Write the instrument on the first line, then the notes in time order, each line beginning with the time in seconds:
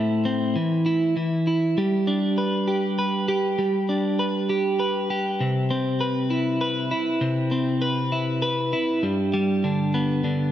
clean electric guitar
Already playing: A2 E4 C5
0.25 C4
0.56 E3
0.86 E4
1.17 E3
1.47 E4
1.78 G3
2.07 D4
2.38 B4
2.68 G4
2.99 B4
3.28 G4
3.59 G3
3.89 D4
4.19 B4
4.50 G4
4.80 B4
5.10 G4
5.41 C3
5.71 C4
6.01 B4
6.30 E4
6.61 B4
6.91 E4
7.21 C3
7.51 C4
7.82 B4
8.12 E4
8.42 B4
8.73 E4
9.03 G2
9.34 G3
9.64 D3
9.94 B3
10.24 D3